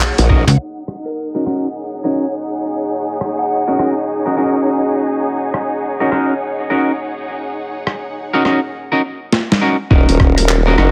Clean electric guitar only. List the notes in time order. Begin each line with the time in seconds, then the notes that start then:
0.29 C#4 D#4 F#4 A#4
1.35 C#4 D#4 F#4 A#4
1.46 C#4 D#4 F#4 A#4
2.04 C#4 D#4 F#4 A#4
3.68 C#4 D#4 F#4 A#4
3.79 C#4 D#4 F#4 A#4
4.26 C#4 D#4 F#4 A#4
4.37 C#4 D#4 F#4 A#4
6.00 C#4 D#4 F#4 A#4
6.11 C#4 D#4 F#4 A#4
6.70 C#4 D#4 F#4 A#4
8.33 C#4 D#4 F#4 A#4
8.45 C#4 D#4 F#4 A#4
8.92 C#4 D#4 F#4 A#4
9.61 C#4 D#4 F#4 A#4
9.91 C#4 D#4 F#4 A#4
10.67 C#4 D#4 F#4 A#4
10.78 C#4 D#4 F#4 A#4